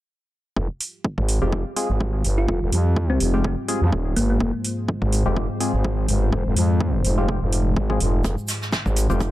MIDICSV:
0, 0, Header, 1, 6, 480
1, 0, Start_track
1, 0, Key_signature, -4, "minor"
1, 0, Tempo, 480000
1, 565, Time_signature, 4, 2, 24, 8
1, 9310, End_track
2, 0, Start_track
2, 0, Title_t, "Analog synth pad"
2, 0, Program_c, 0, 89
2, 565, Note_on_c, 0, 56, 79
2, 565, Note_on_c, 0, 65, 78
2, 565, Note_on_c, 0, 67, 89
2, 4393, Note_off_c, 0, 67, 0
2, 4405, Note_on_c, 0, 72, 90
2, 8205, Note_off_c, 0, 65, 0
2, 8233, Note_off_c, 0, 72, 0
2, 8245, Note_on_c, 0, 63, 76
2, 8245, Note_on_c, 0, 67, 88
2, 9310, Note_off_c, 0, 56, 0
2, 9310, Note_off_c, 0, 63, 0
2, 9310, Note_off_c, 0, 67, 0
2, 9310, End_track
3, 0, Start_track
3, 0, Title_t, "Synth stab"
3, 0, Program_c, 1, 62
3, 1418, Note_on_c, 1, 56, 80
3, 1418, Note_on_c, 1, 60, 74
3, 1418, Note_on_c, 1, 65, 68
3, 1418, Note_on_c, 1, 67, 88
3, 1515, Note_off_c, 1, 56, 0
3, 1515, Note_off_c, 1, 60, 0
3, 1515, Note_off_c, 1, 67, 0
3, 1516, Note_off_c, 1, 65, 0
3, 1765, Note_on_c, 1, 56, 83
3, 1765, Note_on_c, 1, 60, 77
3, 1765, Note_on_c, 1, 65, 77
3, 1765, Note_on_c, 1, 68, 89
3, 1887, Note_off_c, 1, 56, 0
3, 1887, Note_off_c, 1, 60, 0
3, 1887, Note_off_c, 1, 65, 0
3, 1887, Note_off_c, 1, 68, 0
3, 3338, Note_on_c, 1, 56, 81
3, 3338, Note_on_c, 1, 60, 70
3, 3338, Note_on_c, 1, 65, 73
3, 3338, Note_on_c, 1, 67, 91
3, 3436, Note_off_c, 1, 56, 0
3, 3436, Note_off_c, 1, 60, 0
3, 3436, Note_off_c, 1, 65, 0
3, 3436, Note_off_c, 1, 67, 0
3, 3685, Note_on_c, 1, 56, 85
3, 3685, Note_on_c, 1, 60, 74
3, 3685, Note_on_c, 1, 65, 76
3, 3685, Note_on_c, 1, 68, 93
3, 3807, Note_off_c, 1, 56, 0
3, 3807, Note_off_c, 1, 60, 0
3, 3807, Note_off_c, 1, 65, 0
3, 3807, Note_off_c, 1, 68, 0
3, 5258, Note_on_c, 1, 56, 82
3, 5258, Note_on_c, 1, 60, 76
3, 5258, Note_on_c, 1, 65, 69
3, 5258, Note_on_c, 1, 67, 91
3, 5355, Note_off_c, 1, 67, 0
3, 5356, Note_off_c, 1, 56, 0
3, 5356, Note_off_c, 1, 60, 0
3, 5356, Note_off_c, 1, 65, 0
3, 5604, Note_on_c, 1, 56, 81
3, 5604, Note_on_c, 1, 60, 75
3, 5604, Note_on_c, 1, 65, 77
3, 5605, Note_on_c, 1, 68, 98
3, 5726, Note_off_c, 1, 56, 0
3, 5726, Note_off_c, 1, 60, 0
3, 5726, Note_off_c, 1, 65, 0
3, 5726, Note_off_c, 1, 68, 0
3, 7178, Note_on_c, 1, 56, 78
3, 7178, Note_on_c, 1, 60, 73
3, 7178, Note_on_c, 1, 65, 75
3, 7178, Note_on_c, 1, 67, 90
3, 7275, Note_off_c, 1, 65, 0
3, 7275, Note_off_c, 1, 67, 0
3, 7276, Note_off_c, 1, 56, 0
3, 7276, Note_off_c, 1, 60, 0
3, 7898, Note_on_c, 1, 56, 75
3, 7898, Note_on_c, 1, 60, 71
3, 7898, Note_on_c, 1, 65, 67
3, 7898, Note_on_c, 1, 68, 83
3, 7996, Note_off_c, 1, 56, 0
3, 7996, Note_off_c, 1, 60, 0
3, 7996, Note_off_c, 1, 65, 0
3, 7996, Note_off_c, 1, 68, 0
3, 9098, Note_on_c, 1, 56, 77
3, 9098, Note_on_c, 1, 60, 72
3, 9098, Note_on_c, 1, 65, 72
3, 9098, Note_on_c, 1, 67, 85
3, 9196, Note_off_c, 1, 56, 0
3, 9196, Note_off_c, 1, 60, 0
3, 9196, Note_off_c, 1, 65, 0
3, 9196, Note_off_c, 1, 67, 0
3, 9310, End_track
4, 0, Start_track
4, 0, Title_t, "Synth pluck"
4, 0, Program_c, 2, 84
4, 2378, Note_on_c, 2, 65, 86
4, 3045, Note_off_c, 2, 65, 0
4, 3098, Note_on_c, 2, 60, 88
4, 3263, Note_off_c, 2, 60, 0
4, 4164, Note_on_c, 2, 58, 87
4, 4250, Note_off_c, 2, 58, 0
4, 4299, Note_on_c, 2, 58, 71
4, 4367, Note_off_c, 2, 58, 0
4, 9310, End_track
5, 0, Start_track
5, 0, Title_t, "FM bass"
5, 0, Program_c, 3, 39
5, 565, Note_on_c, 3, 29, 91
5, 677, Note_off_c, 3, 29, 0
5, 1178, Note_on_c, 3, 32, 89
5, 1397, Note_off_c, 3, 32, 0
5, 1418, Note_on_c, 3, 29, 91
5, 1637, Note_off_c, 3, 29, 0
5, 1898, Note_on_c, 3, 32, 95
5, 2228, Note_off_c, 3, 32, 0
5, 2245, Note_on_c, 3, 31, 90
5, 2468, Note_off_c, 3, 31, 0
5, 2485, Note_on_c, 3, 29, 93
5, 2597, Note_off_c, 3, 29, 0
5, 2618, Note_on_c, 3, 29, 90
5, 2708, Note_off_c, 3, 29, 0
5, 2725, Note_on_c, 3, 41, 92
5, 3188, Note_off_c, 3, 41, 0
5, 3205, Note_on_c, 3, 29, 86
5, 3557, Note_off_c, 3, 29, 0
5, 3818, Note_on_c, 3, 41, 94
5, 3908, Note_off_c, 3, 41, 0
5, 3925, Note_on_c, 3, 27, 91
5, 4148, Note_off_c, 3, 27, 0
5, 4165, Note_on_c, 3, 31, 92
5, 4388, Note_off_c, 3, 31, 0
5, 4405, Note_on_c, 3, 29, 94
5, 4517, Note_off_c, 3, 29, 0
5, 5018, Note_on_c, 3, 32, 85
5, 5237, Note_off_c, 3, 32, 0
5, 5258, Note_on_c, 3, 29, 89
5, 5477, Note_off_c, 3, 29, 0
5, 5738, Note_on_c, 3, 32, 98
5, 6068, Note_off_c, 3, 32, 0
5, 6085, Note_on_c, 3, 31, 94
5, 6308, Note_off_c, 3, 31, 0
5, 6325, Note_on_c, 3, 29, 91
5, 6437, Note_off_c, 3, 29, 0
5, 6458, Note_on_c, 3, 29, 87
5, 6548, Note_off_c, 3, 29, 0
5, 6565, Note_on_c, 3, 41, 91
5, 7028, Note_off_c, 3, 41, 0
5, 7045, Note_on_c, 3, 29, 88
5, 7397, Note_off_c, 3, 29, 0
5, 7418, Note_on_c, 3, 29, 89
5, 7748, Note_off_c, 3, 29, 0
5, 7765, Note_on_c, 3, 32, 88
5, 7988, Note_off_c, 3, 32, 0
5, 8005, Note_on_c, 3, 29, 89
5, 8228, Note_off_c, 3, 29, 0
5, 8245, Note_on_c, 3, 29, 90
5, 8357, Note_off_c, 3, 29, 0
5, 8858, Note_on_c, 3, 32, 89
5, 9077, Note_off_c, 3, 32, 0
5, 9097, Note_on_c, 3, 29, 93
5, 9310, Note_off_c, 3, 29, 0
5, 9310, End_track
6, 0, Start_track
6, 0, Title_t, "Drums"
6, 565, Note_on_c, 9, 36, 92
6, 665, Note_off_c, 9, 36, 0
6, 805, Note_on_c, 9, 46, 92
6, 905, Note_off_c, 9, 46, 0
6, 1045, Note_on_c, 9, 36, 114
6, 1145, Note_off_c, 9, 36, 0
6, 1178, Note_on_c, 9, 36, 52
6, 1278, Note_off_c, 9, 36, 0
6, 1285, Note_on_c, 9, 46, 90
6, 1385, Note_off_c, 9, 46, 0
6, 1525, Note_on_c, 9, 36, 101
6, 1625, Note_off_c, 9, 36, 0
6, 1765, Note_on_c, 9, 46, 94
6, 1865, Note_off_c, 9, 46, 0
6, 2005, Note_on_c, 9, 36, 104
6, 2105, Note_off_c, 9, 36, 0
6, 2245, Note_on_c, 9, 46, 90
6, 2345, Note_off_c, 9, 46, 0
6, 2485, Note_on_c, 9, 36, 105
6, 2585, Note_off_c, 9, 36, 0
6, 2725, Note_on_c, 9, 46, 94
6, 2825, Note_off_c, 9, 46, 0
6, 2965, Note_on_c, 9, 36, 115
6, 3065, Note_off_c, 9, 36, 0
6, 3204, Note_on_c, 9, 46, 96
6, 3304, Note_off_c, 9, 46, 0
6, 3445, Note_on_c, 9, 36, 110
6, 3545, Note_off_c, 9, 36, 0
6, 3685, Note_on_c, 9, 46, 98
6, 3785, Note_off_c, 9, 46, 0
6, 3925, Note_on_c, 9, 36, 107
6, 4025, Note_off_c, 9, 36, 0
6, 4165, Note_on_c, 9, 46, 97
6, 4265, Note_off_c, 9, 46, 0
6, 4405, Note_on_c, 9, 36, 102
6, 4505, Note_off_c, 9, 36, 0
6, 4645, Note_on_c, 9, 46, 97
6, 4745, Note_off_c, 9, 46, 0
6, 4885, Note_on_c, 9, 36, 122
6, 4985, Note_off_c, 9, 36, 0
6, 5018, Note_on_c, 9, 36, 52
6, 5118, Note_off_c, 9, 36, 0
6, 5125, Note_on_c, 9, 46, 99
6, 5225, Note_off_c, 9, 46, 0
6, 5365, Note_on_c, 9, 36, 109
6, 5465, Note_off_c, 9, 36, 0
6, 5605, Note_on_c, 9, 46, 100
6, 5705, Note_off_c, 9, 46, 0
6, 5845, Note_on_c, 9, 36, 113
6, 5945, Note_off_c, 9, 36, 0
6, 6085, Note_on_c, 9, 46, 95
6, 6185, Note_off_c, 9, 46, 0
6, 6325, Note_on_c, 9, 36, 107
6, 6425, Note_off_c, 9, 36, 0
6, 6565, Note_on_c, 9, 46, 101
6, 6665, Note_off_c, 9, 46, 0
6, 6805, Note_on_c, 9, 36, 124
6, 6905, Note_off_c, 9, 36, 0
6, 7045, Note_on_c, 9, 46, 96
6, 7145, Note_off_c, 9, 46, 0
6, 7285, Note_on_c, 9, 36, 112
6, 7385, Note_off_c, 9, 36, 0
6, 7525, Note_on_c, 9, 46, 100
6, 7625, Note_off_c, 9, 46, 0
6, 7765, Note_on_c, 9, 36, 105
6, 7865, Note_off_c, 9, 36, 0
6, 7898, Note_on_c, 9, 36, 56
6, 7998, Note_off_c, 9, 36, 0
6, 8004, Note_on_c, 9, 46, 96
6, 8104, Note_off_c, 9, 46, 0
6, 8241, Note_on_c, 9, 82, 45
6, 8244, Note_on_c, 9, 42, 81
6, 8245, Note_on_c, 9, 36, 101
6, 8341, Note_off_c, 9, 82, 0
6, 8344, Note_off_c, 9, 42, 0
6, 8345, Note_off_c, 9, 36, 0
6, 8380, Note_on_c, 9, 82, 23
6, 8479, Note_off_c, 9, 82, 0
6, 8479, Note_on_c, 9, 82, 79
6, 8480, Note_on_c, 9, 42, 60
6, 8484, Note_on_c, 9, 46, 97
6, 8485, Note_on_c, 9, 38, 40
6, 8579, Note_off_c, 9, 82, 0
6, 8580, Note_off_c, 9, 42, 0
6, 8584, Note_off_c, 9, 46, 0
6, 8585, Note_off_c, 9, 38, 0
6, 8617, Note_on_c, 9, 38, 34
6, 8626, Note_on_c, 9, 82, 34
6, 8717, Note_off_c, 9, 38, 0
6, 8724, Note_off_c, 9, 82, 0
6, 8724, Note_on_c, 9, 82, 49
6, 8725, Note_on_c, 9, 36, 112
6, 8727, Note_on_c, 9, 38, 108
6, 8728, Note_on_c, 9, 42, 81
6, 8824, Note_off_c, 9, 82, 0
6, 8825, Note_off_c, 9, 36, 0
6, 8827, Note_off_c, 9, 38, 0
6, 8828, Note_off_c, 9, 42, 0
6, 8858, Note_on_c, 9, 36, 50
6, 8860, Note_on_c, 9, 82, 24
6, 8958, Note_off_c, 9, 36, 0
6, 8960, Note_off_c, 9, 82, 0
6, 8964, Note_on_c, 9, 46, 96
6, 8966, Note_on_c, 9, 42, 57
6, 8972, Note_on_c, 9, 82, 80
6, 9064, Note_off_c, 9, 46, 0
6, 9066, Note_off_c, 9, 42, 0
6, 9072, Note_off_c, 9, 82, 0
6, 9093, Note_on_c, 9, 42, 38
6, 9105, Note_on_c, 9, 82, 39
6, 9193, Note_off_c, 9, 42, 0
6, 9201, Note_off_c, 9, 82, 0
6, 9201, Note_on_c, 9, 82, 45
6, 9205, Note_on_c, 9, 36, 110
6, 9205, Note_on_c, 9, 42, 83
6, 9301, Note_off_c, 9, 82, 0
6, 9305, Note_off_c, 9, 36, 0
6, 9305, Note_off_c, 9, 42, 0
6, 9310, End_track
0, 0, End_of_file